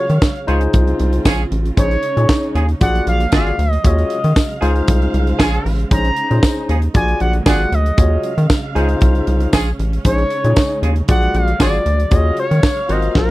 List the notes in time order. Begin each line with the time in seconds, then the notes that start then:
Already playing: C#3 F#3 G#3 C#5 F5
0.10 D#3, closed hi-hat
0.22 kick, snare, tambourine
0.36 closed hi-hat
0.47 C#2 C#3 C4 C#4 D#4 F4 G#4 C5, closed hi-hat
0.61 closed hi-hat
0.73 C2, kick, closed hi-hat
0.88 closed hi-hat
0.99 C2, closed hi-hat
1.13 closed hi-hat
1.25 A#1 C#4 F4 G#4, kick, snare, tambourine
1.51 A1, closed hi-hat
1.66 closed hi-hat
1.77 A#1 C#4 D#4 G#4 C5 C#5, kick, closed hi-hat
1.91 closed hi-hat
2.03 closed hi-hat
2.17 A#2 C#4 D#4 G#4 C#5, closed hi-hat
2.29 kick, snare, tambourine
2.43 closed hi-hat
2.55 D#2 D#4 F4 G#4, closed hi-hat
2.69 closed hi-hat
2.81 A#1 D3 F#3 A#3 F4 F#4 G#4 D5 F#5, kick, closed hi-hat
2.95 closed hi-hat
3.07 A#1 F5, closed hi-hat
3.20 closed hi-hat
3.32 G#1 D4 F4 F#4 G#4 D5 F5, kick, snare, tambourine
3.47 closed hi-hat
3.58 D2, closed hi-hat
3.73 D#5, closed hi-hat
3.84 D#2 C#3 F#3 G#3 F4 F#4 G#4 C#5 D#5 F5, kick, closed hi-hat
3.98 closed hi-hat
4.10 closed hi-hat
4.24 D#3, closed hi-hat
4.36 kick, snare, tambourine
4.50 closed hi-hat
4.61 C#2 C#3 C#4 D#4 F4 G#4 C5, closed hi-hat
4.76 closed hi-hat
4.88 C2, kick, closed hi-hat
5.02 closed hi-hat
5.14 C2, closed hi-hat
5.27 closed hi-hat
5.39 A#1 C#4 F4 G#4, kick, snare, tambourine
5.54 closed hi-hat
5.65 A1, open hi-hat
5.80 closed hi-hat
5.91 A#1 C#4 D#4 G#4 C5 A#5, kick, closed hi-hat
6.05 closed hi-hat
6.16 closed hi-hat
6.30 A#2 C#4 D#4 G#4 C5, closed hi-hat
6.43 kick, snare, tambourine
6.68 D#2 D#4 F4 G#4, closed hi-hat
6.82 closed hi-hat
6.94 A#1 D3 F#3 G#3 A#3 F4 F#4 G#4 D5 G#5, kick, closed hi-hat
7.08 closed hi-hat
7.20 A#1 F#5, closed hi-hat
7.33 closed hi-hat
7.46 G#1 D4 F4 F#4 G#4 D5 F#5, kick, snare, tambourine
7.72 D2 D#5, closed hi-hat
7.86 closed hi-hat
7.97 D#2 C#3 F#3 G#3 F4 F#4 G#4 C#5 F5, kick, closed hi-hat
8.23 closed hi-hat
8.38 D#3, closed hi-hat
8.50 kick, snare, tambourine
8.75 C#2 C#4 D#4 F4 G#4 C5, closed hi-hat
8.89 closed hi-hat
9.01 C2, kick, closed hi-hat
9.15 closed hi-hat
9.27 C2, closed hi-hat
9.40 closed hi-hat
9.53 A#1 C#4 F4 G#4, kick, snare, tambourine
9.67 closed hi-hat
9.79 A1, closed hi-hat
9.93 closed hi-hat
10.05 A#1 C#3 C#4 D#4 G#4 C5 C#5, kick, closed hi-hat
10.18 closed hi-hat
10.30 closed hi-hat
10.44 A#2 C#4 D#4 G#4 C#5, closed hi-hat
10.56 kick, snare, tambourine
10.71 closed hi-hat
10.82 D#2 D#4 F4 G#4, closed hi-hat
10.96 closed hi-hat
11.08 A#1 D3 F#3 A#3 F4 F#4 G#4 D5 F#5, kick, closed hi-hat
11.23 closed hi-hat
11.34 A#1 F5, closed hi-hat
11.48 closed hi-hat
11.60 G#1 D4 F4 F#4 G#4 D5, kick, snare, tambourine
11.86 D2, closed hi-hat
12.00 closed hi-hat
12.11 D#2 C#3 F#3 F4 F#4 G#4 C#5 D#5 F5, kick, closed hi-hat
12.37 C#5, closed hi-hat
12.51 D#3, closed hi-hat
12.63 kick, snare, tambourine
12.77 closed hi-hat
12.89 G#1 C3 A#3 C4 D#4 F4 F#4 A#4 C5 D#5, closed hi-hat
13.02 closed hi-hat
13.15 A#1 A#4, kick, snare